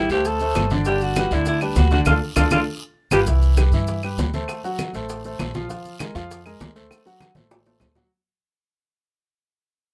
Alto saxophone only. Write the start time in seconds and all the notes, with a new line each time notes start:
0.11 G4
0.27 A4
0.87 G4
1.03 F#4
1.33 E4
1.48 E4
1.62 D4
1.78 F#4
1.93 F#4
2.07 F4
2.37 F4
2.53 F4
3.13 G4